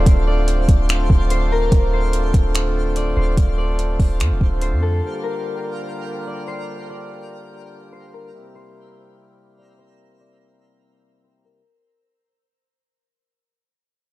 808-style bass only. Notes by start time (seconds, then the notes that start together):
0.06 D1
0.69 D1
1.10 D1
1.72 D1
2.34 D1
3.17 D1
3.37 D1
4.00 D1
4.20 F2
4.31 D1
4.41 D1
4.72 F2